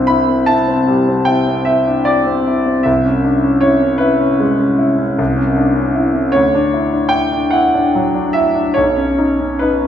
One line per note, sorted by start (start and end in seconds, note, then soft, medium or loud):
0.00 2.82 C2 soft
0.00 0.29 C4 soft
0.00 1.87 D4 soft
0.00 1.65 E5 medium
0.07 0.42 E4 soft
0.07 0.48 B5 medium
0.29 0.61 C4 soft
0.46 0.81 E4 soft
0.46 1.27 A5 medium
0.68 1.00 C4 soft
0.88 1.20 G3 soft
1.08 1.40 C4 soft
1.25 1.59 E4 soft
1.25 1.66 G5 medium
1.48 1.79 C4 soft
1.65 1.99 E4 soft
1.65 2.06 E5 medium
1.87 2.07 D4 soft
2.05 2.39 E4 soft
2.05 2.85 D5 medium
2.27 2.59 C4 soft
2.47 2.79 E4 soft
2.66 2.86 C4 soft
2.83 5.14 C2 soft
2.83 3.62 E5 medium
3.05 3.36 C#4 soft
3.24 3.44 D4 soft
3.43 3.75 C#4 soft
3.61 3.94 E4 soft
3.61 4.00 C#5 medium
3.82 4.13 C#4 soft
3.98 4.32 E4 soft
3.98 5.94 B4 medium
4.20 4.52 C#4 soft
4.40 4.72 G#3 soft
4.59 4.91 C#4 soft
4.78 5.11 E4 soft
4.98 5.19 C#4 soft
5.18 6.31 C2 soft
5.37 5.69 C#4 soft
5.57 5.76 D4 soft
5.76 6.07 C#4 soft
5.96 6.27 E4 soft
6.15 6.34 C#4 soft
6.32 8.72 D2 soft
6.32 7.12 C#5 medium
6.55 6.86 D4 soft
6.74 6.93 E4 soft
6.93 7.25 D4 soft
7.09 7.44 E4 soft
7.09 7.51 G5 medium
7.32 7.65 D4 soft
7.51 7.85 E4 soft
7.51 8.33 F#5 medium
7.74 8.06 D4 soft
7.95 8.27 F#3 soft
8.14 8.47 D4 soft
8.33 8.68 E4 soft
8.33 8.75 E5 medium
8.55 8.76 D4 soft
8.74 9.87 B1 soft
8.74 9.61 C#5 medium
8.96 9.31 C#4 soft
9.18 9.40 D#4 soft
9.40 9.75 C#4 soft
9.59 9.87 D#4 soft
9.59 9.87 B4 medium
9.82 9.87 C#4 soft